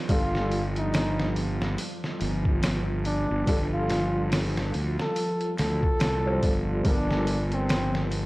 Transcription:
Already playing: F3 F4
0.09 G1 G3 F4 A4, kick, open hi-hat
0.35 snare
0.52 open hi-hat
0.76 D#4, closed hi-hat
0.94 snare, open hi-hat
1.19 snare
1.36 open hi-hat
1.62 snare
1.78 open hi-hat
2.04 snare
2.21 G1, open hi-hat
2.45 kick
2.63 snare, open hi-hat
3.05 D4, open hi-hat
3.31 G1
3.47 G1 G3 F4 A4, kick, open hi-hat
3.74 F4
3.90 snare, open hi-hat
4.32 snare, open hi-hat
4.57 snare
4.74 D2, open hi-hat
5.00 A4, snare
5.16 open hi-hat
5.41 closed hi-hat
5.58 D2 A4, snare, open hi-hat
5.83 kick
6.00 C2, snare, open hi-hat
6.25 G3 F4 C5
6.43 G1 G3 F4 A4, kick, open hi-hat
6.84 G1 F3 G3 D4 F4 A4 A#4, kick, open hi-hat
7.11 snare
7.27 open hi-hat
7.52 C4, closed hi-hat
7.69 snare, open hi-hat
7.95 snare
8.11 open hi-hat

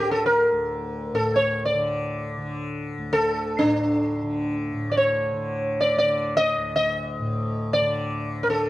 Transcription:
Already playing: D2 A2 D3
0.00 G4
0.11 A4
0.26 A#4
0.52 D2
1.13 A2 A4
1.36 C#5
1.65 D5
1.74 D3
2.38 D3
2.98 D2
3.13 A4
3.59 A2 D4
4.23 D3
4.72 A2
4.92 D5
4.97 C#5
5.33 D3
5.81 D5
5.96 D3 D5
6.37 D#5
6.57 D2
6.76 D#5
7.20 A2
7.73 D5
7.81 D3
8.43 D3 A#4
8.50 A4

